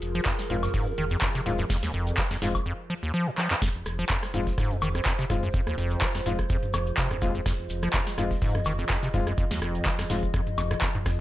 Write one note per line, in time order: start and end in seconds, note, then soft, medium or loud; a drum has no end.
0.00 0.20 F1 medium
0.00 2.62 F3 medium
0.00 2.62 F4 medium
0.00 2.62 G#4 medium
0.00 2.63 A#4 medium
0.00 closed hi-hat medium
0.00 open hi-hat loud
0.15 0.21 F3 medium
0.15 closed hi-hat medium
0.15 cabasa medium
0.25 0.33 F2 medium
0.25 kick loud
0.25 snare loud
0.25 clap loud
0.25 closed hi-hat medium
0.25 cabasa medium
0.38 snare soft
0.38 closed hi-hat soft
0.38 cabasa soft
0.50 0.68 F1 loud
0.50 0.57 G#2 medium
0.50 0.58 G#3 medium
0.50 0.58 C4 medium
0.50 0.58 F4 medium
0.50 closed hi-hat medium
0.50 open hi-hat loud
0.63 snare soft
0.63 closed hi-hat medium
0.63 mid tom medium
0.63 cabasa medium
0.63 high woodblock medium
0.74 0.88 G#2 loud
0.74 kick loud
0.74 closed hi-hat medium
0.74 open hi-hat medium
0.74 cabasa medium
0.87 0.93 F2 medium
0.87 cabasa soft
0.98 1.16 F1 loud
0.98 1.05 D#3 medium
0.98 closed hi-hat medium
0.98 open hi-hat loud
1.11 1.17 F2 loud
1.11 closed hi-hat medium
1.11 cabasa medium
1.21 1.29 F2 medium
1.21 kick loud
1.21 snare loud
1.21 clap loud
1.21 closed hi-hat medium
1.21 cabasa medium
1.35 1.41 C3 loud
1.35 snare soft
1.35 closed hi-hat soft
1.35 cabasa soft
1.46 1.64 D#1 loud
1.46 1.53 G#2 medium
1.46 1.54 G#3 medium
1.46 1.54 C4 medium
1.46 1.54 F4 medium
1.46 closed hi-hat medium
1.46 open hi-hat loud
1.59 1.65 F#2 loud
1.59 closed hi-hat medium
1.59 cabasa medium
1.70 1.77 F2 loud
1.70 kick loud
1.70 snare medium
1.70 closed hi-hat medium
1.70 cabasa medium
1.83 1.91 F1 loud
1.83 1.92 D#2 loud
1.83 snare medium
1.83 closed hi-hat soft
1.83 cabasa soft
1.94 2.12 F1 medium
1.94 2.19 F2 medium
1.94 closed hi-hat medium
1.94 open hi-hat loud
2.07 closed hi-hat medium
2.07 cabasa medium
2.17 2.22 G#3 medium
2.17 kick loud
2.17 snare loud
2.17 clap loud
2.17 closed hi-hat medium
2.17 cabasa medium
2.31 2.37 F2 medium
2.31 snare soft
2.31 closed hi-hat soft
2.31 cabasa soft
2.42 2.60 F1 loud
2.42 2.49 G#2 medium
2.42 2.50 G#3 medium
2.42 2.50 C4 medium
2.42 2.50 F4 medium
2.42 snare medium
2.42 closed hi-hat medium
2.42 open hi-hat loud
2.55 kick medium
2.55 closed hi-hat medium
2.55 cabasa medium
2.55 high woodblock medium
2.66 2.73 F2 loud
2.90 2.94 F3 medium
3.03 3.12 D#2 loud
3.14 3.28 F3 loud
3.27 3.31 G#2 loud
3.38 3.49 F3 medium
3.38 clap medium
3.51 3.54 F2 loud
3.51 clap loud
3.62 3.69 F2 loud
3.62 11.20 F3 medium
3.62 11.20 F4 medium
3.62 11.20 G#4 medium
3.62 7.45 C5 medium
3.62 kick loud
3.62 snare medium
3.62 closed hi-hat medium
3.62 cabasa medium
3.75 3.83 F1 medium
3.75 cabasa soft
3.86 4.04 F1 medium
3.86 cross-stick medium
3.86 closed hi-hat medium
3.86 open hi-hat loud
3.86 cabasa loud
3.98 4.05 F3 medium
3.98 closed hi-hat medium
3.98 cabasa soft
4.09 4.17 F2 medium
4.09 kick loud
4.09 snare loud
4.09 clap loud
4.09 closed hi-hat medium
4.09 cabasa medium
4.23 cross-stick medium
4.23 snare soft
4.23 closed hi-hat soft
4.23 cabasa soft
4.34 4.52 F1 loud
4.34 4.41 G#2 medium
4.34 4.42 G#3 medium
4.34 4.42 C4 medium
4.34 4.42 F4 medium
4.34 closed hi-hat medium
4.34 open hi-hat loud
4.34 cabasa medium
4.47 kick medium
4.47 snare soft
4.47 closed hi-hat medium
4.47 cabasa soft
4.58 4.72 G#2 loud
4.58 kick loud
4.58 cross-stick medium
4.58 closed hi-hat medium
4.58 open hi-hat medium
4.58 cabasa soft
4.71 4.77 F2 medium
4.71 mid tom medium
4.71 cabasa soft
4.82 5.00 F1 loud
4.82 4.89 D#3 medium
4.82 closed hi-hat medium
4.82 open hi-hat loud
4.82 cabasa medium
4.82 high woodblock medium
4.95 5.01 F2 loud
4.95 cross-stick medium
4.95 closed hi-hat medium
4.95 cabasa soft
5.05 5.13 F2 medium
5.05 kick loud
5.05 snare loud
5.05 clap loud
5.05 closed hi-hat medium
5.05 cabasa soft
5.18 5.25 C3 loud
5.18 snare soft
5.18 closed hi-hat soft
5.18 cabasa soft
5.30 5.48 D#1 loud
5.30 5.37 G#2 medium
5.30 5.38 G#3 medium
5.30 5.38 C4 medium
5.30 5.38 F4 medium
5.30 kick medium
5.30 cross-stick medium
5.30 closed hi-hat medium
5.30 mid tom medium
5.30 open hi-hat loud
5.30 cabasa medium
5.43 5.49 F#2 loud
5.43 closed hi-hat medium
5.43 cabasa soft
5.53 5.61 F2 loud
5.53 kick loud
5.53 closed hi-hat medium
5.53 cabasa medium
5.67 5.75 F1 loud
5.67 5.76 D#2 loud
5.67 cross-stick medium
5.67 cabasa soft
5.78 5.96 F1 medium
5.78 6.03 F2 medium
5.78 closed hi-hat medium
5.78 open hi-hat loud
5.78 cabasa loud
5.90 closed hi-hat medium
5.90 cabasa soft
6.01 6.06 G#3 medium
6.01 kick loud
6.01 cross-stick medium
6.01 snare loud
6.01 clap loud
6.01 closed hi-hat medium
6.01 cabasa soft
6.15 6.21 F2 medium
6.15 snare soft
6.15 cabasa soft
6.26 6.44 F1 loud
6.26 6.33 G#2 medium
6.26 6.34 G#3 medium
6.26 6.34 C4 medium
6.26 6.34 F4 medium
6.26 closed hi-hat medium
6.26 open hi-hat loud
6.26 cabasa loud
6.39 kick medium
6.39 cross-stick medium
6.39 closed hi-hat medium
6.39 cabasa soft
6.49 6.57 F2 loud
6.49 kick loud
6.49 closed hi-hat medium
6.49 cabasa medium
6.63 mid tom medium
6.63 cabasa soft
6.74 6.92 F1 loud
6.74 6.78 F2 medium
6.74 cross-stick medium
6.74 closed hi-hat medium
6.74 open hi-hat loud
6.74 cabasa medium
6.74 high woodblock medium
6.86 closed hi-hat medium
6.86 cabasa soft
6.97 7.09 C3 loud
6.97 kick loud
6.97 snare loud
6.97 clap loud
6.97 closed hi-hat medium
6.97 cabasa medium
7.10 7.17 F2 medium
7.10 cross-stick medium
7.10 closed hi-hat soft
7.10 mid tom loud
7.10 cabasa soft
7.21 7.40 D#1 loud
7.21 7.33 D#2 loud
7.21 7.30 G#3 medium
7.21 7.30 C4 medium
7.21 7.30 F4 medium
7.21 kick medium
7.21 closed hi-hat medium
7.21 open hi-hat loud
7.21 cabasa loud
7.35 7.41 F2 medium
7.35 closed hi-hat medium
7.35 cabasa soft
7.46 7.53 F2 loud
7.46 11.20 D#5 medium
7.46 kick loud
7.46 cross-stick medium
7.46 snare medium
7.46 closed hi-hat medium
7.46 cabasa medium
7.59 7.67 F1 medium
7.59 cabasa soft
7.70 7.88 F1 medium
7.70 closed hi-hat medium
7.70 open hi-hat loud
7.70 cabasa loud
7.82 7.89 F3 medium
7.82 cross-stick medium
7.82 closed hi-hat medium
7.82 cabasa soft
7.93 8.01 F2 medium
7.93 kick loud
7.93 snare loud
7.93 clap loud
7.93 closed hi-hat medium
7.93 cabasa medium
8.06 snare soft
8.06 closed hi-hat soft
8.06 cabasa soft
8.18 8.36 F1 loud
8.18 8.25 G#2 medium
8.18 8.26 G#3 medium
8.18 8.26 C4 medium
8.18 8.26 F4 medium
8.18 cross-stick medium
8.18 closed hi-hat medium
8.18 open hi-hat loud
8.18 cabasa loud
8.31 kick medium
8.31 snare soft
8.31 closed hi-hat medium
8.31 cabasa soft
8.42 8.56 G#2 loud
8.42 kick loud
8.42 closed hi-hat medium
8.42 open hi-hat medium
8.42 cabasa medium
8.55 8.61 F2 medium
8.55 cross-stick medium
8.55 mid tom medium
8.55 cabasa soft
8.65 8.84 F1 loud
8.65 8.73 D#3 medium
8.65 closed hi-hat medium
8.65 open hi-hat loud
8.65 cabasa medium
8.65 high woodblock medium
8.79 8.85 F2 loud
8.79 closed hi-hat medium
8.79 cabasa soft
8.89 8.97 F2 medium
8.89 kick loud
8.89 cross-stick medium
8.89 snare loud
8.89 clap loud
8.89 closed hi-hat medium
8.89 cabasa medium
9.02 9.09 C3 loud
9.02 snare soft
9.02 closed hi-hat soft
9.02 cabasa soft
9.14 9.32 D#1 loud
9.14 9.21 G#2 medium
9.14 9.22 G#3 medium
9.14 9.22 C4 medium
9.14 9.22 F4 medium
9.14 kick medium
9.14 closed hi-hat medium
9.14 mid tom loud
9.14 open hi-hat loud
9.14 cabasa loud
9.27 9.33 F#2 loud
9.27 cross-stick medium
9.27 closed hi-hat medium
9.27 cabasa soft
9.38 9.45 F2 loud
9.38 kick loud
9.38 closed hi-hat medium
9.38 cabasa medium
9.50 9.59 F1 loud
9.50 9.60 D#2 loud
9.50 snare medium
9.50 cabasa soft
9.62 9.80 F1 medium
9.62 9.87 F2 medium
9.62 cross-stick medium
9.62 closed hi-hat medium
9.62 open hi-hat loud
9.62 cabasa medium
9.75 closed hi-hat medium
9.75 cabasa soft
9.85 9.90 G#3 medium
9.85 kick loud
9.85 snare loud
9.85 clap loud
9.85 closed hi-hat medium
9.85 cabasa medium
9.98 10.05 F2 medium
9.98 cross-stick medium
9.98 snare soft
9.98 closed hi-hat soft
9.98 cabasa soft
10.10 10.28 F1 loud
10.10 10.17 G#2 medium
10.10 10.18 G#3 medium
10.10 10.18 C4 medium
10.10 10.18 F4 medium
10.10 snare medium
10.10 closed hi-hat medium
10.10 open hi-hat loud
10.10 cabasa medium
10.23 kick medium
10.23 closed hi-hat soft
10.23 cabasa soft
10.34 10.41 F2 loud
10.34 kick loud
10.34 cross-stick medium
10.34 closed hi-hat medium
10.34 cabasa medium
10.47 closed hi-hat soft
10.47 mid tom medium
10.47 cabasa soft
10.58 10.76 F1 loud
10.58 10.62 F2 loud
10.58 closed hi-hat medium
10.58 open hi-hat loud
10.58 cabasa loud
10.58 high woodblock medium
10.71 10.75 G#2 loud
10.71 cross-stick medium
10.71 closed hi-hat medium
10.71 cabasa soft
10.81 10.89 F2 medium
10.81 kick loud
10.81 snare loud
10.81 clap loud
10.81 closed hi-hat medium
10.81 cabasa medium
10.95 10.99 G#2 medium
10.95 closed hi-hat soft
10.95 mid tom loud
10.95 cabasa soft
11.06 11.10 F2 medium
11.06 11.20 F2 medium
11.06 kick medium
11.06 cross-stick medium
11.06 snare loud
11.06 closed hi-hat medium
11.06 open hi-hat loud
11.06 cabasa loud